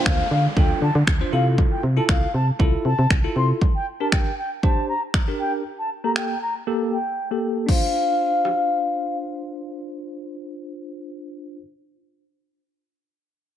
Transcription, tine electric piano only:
0.00 0.23 D4 medium
0.00 0.23 F4 medium
0.00 0.23 C5 medium
0.56 0.86 D4 medium
0.56 0.86 F4 medium
0.56 0.86 A4 medium
1.21 1.33 D4 medium
1.21 1.32 F4 medium
1.21 1.33 C5 medium
1.32 1.84 E4 medium
1.32 1.84 F4 medium
1.32 1.84 A4 medium
1.97 2.26 E4 medium
1.97 2.26 F4 medium
1.97 2.26 A4 medium
2.59 2.89 E4 loud
2.59 2.89 F4 medium
2.59 2.89 A4 loud
3.24 3.58 E4 medium
3.24 3.59 F4 medium
3.24 3.59 A4 medium
4.00 4.29 D4 medium
4.00 4.29 G4 medium
4.00 4.30 A#4 medium
4.63 4.93 D4 medium
4.63 4.93 G4 medium
4.63 4.93 C5 medium
5.28 5.62 D4 medium
5.28 5.62 G4 medium
5.28 5.62 A#4 medium
6.04 6.33 A#3 medium
6.04 6.33 G4 medium
6.04 6.33 A4 medium
6.67 6.96 A#3 medium
6.67 6.96 G4 medium
6.67 6.96 A4 loud
7.31 7.65 A#3 medium
7.31 7.66 G4 medium
7.31 7.66 A4 medium
7.67 11.57 D4 medium
7.67 11.60 F4 medium
7.71 11.61 C5 medium

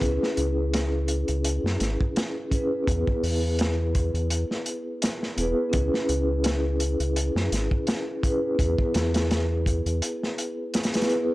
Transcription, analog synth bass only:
0.02 0.19 C#2 loud
0.38 1.25 C#2 medium
1.29 1.60 C#2 medium
1.64 1.78 F#2 medium
1.80 1.98 G#1 medium
2.87 3.05 E2 loud
3.23 4.11 E2 medium
4.14 4.45 E2 medium
5.37 5.55 E1 medium
5.74 5.91 C#2 loud
6.09 6.96 C#2 medium
7.00 7.31 C#2 medium
7.35 7.50 F#2 medium
7.52 7.69 G#1 medium
8.59 8.76 E2 loud
8.95 9.82 E2 medium
9.86 10.02 E2 medium

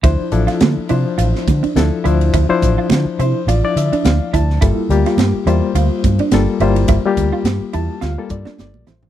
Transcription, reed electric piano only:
0.04 0.31 F3 medium
0.04 0.31 D4 medium
0.04 0.31 E4 medium
0.04 0.31 C5 medium
0.32 0.87 F3 medium
0.32 0.87 D4 medium
0.32 0.87 E4 medium
0.32 0.87 A4 medium
0.90 1.71 F3 medium
0.90 1.71 D4 medium
0.90 1.72 E4 medium
0.90 1.72 C5 medium
1.76 2.03 F3 medium
1.76 2.03 D4 medium
1.76 2.03 E4 medium
1.76 2.04 A4 medium
2.05 2.47 F3 medium
2.05 2.47 D4 medium
2.05 2.47 E4 medium
2.05 2.47 C5 medium
2.49 3.56 F3 medium
2.49 3.56 D4 medium
2.49 3.56 E4 medium
2.49 3.19 C5 loud
3.21 3.47 C5 medium
3.49 3.63 D5 medium
3.64 4.57 F3 medium
3.64 4.57 D4 medium
3.64 4.57 E4 medium
3.64 4.57 D5 medium
3.77 4.03 E5 medium
4.05 4.32 F5 medium
4.34 4.60 A5 medium
4.62 4.89 G3 medium
4.62 4.89 A#3 medium
4.62 4.89 F4 medium
4.62 4.89 A4 medium
4.90 5.44 G3 medium
4.90 5.44 A#3 medium
4.90 5.45 F4 medium
4.90 5.45 G4 medium
5.47 6.27 G3 medium
5.47 6.28 A#3 medium
5.47 6.28 F4 medium
5.47 6.28 C5 medium
6.33 6.60 G3 medium
6.33 6.60 A#3 medium
6.33 6.60 F4 medium
6.33 6.60 A4 loud
6.61 7.02 G3 medium
6.61 7.02 A#3 medium
6.61 7.02 F4 medium
6.61 7.02 C5 medium
7.06 8.11 G3 loud
7.06 8.11 A#3 medium
7.06 8.11 F4 medium
7.06 8.11 G4 loud
7.74 8.00 A5 medium
8.03 8.29 F5 medium
8.18 9.10 G3 medium
8.18 9.10 A#3 medium
8.18 9.10 F4 medium
8.18 9.10 A4 medium
8.31 8.57 D5 medium
8.60 8.86 D5 medium
8.87 9.10 C5 medium

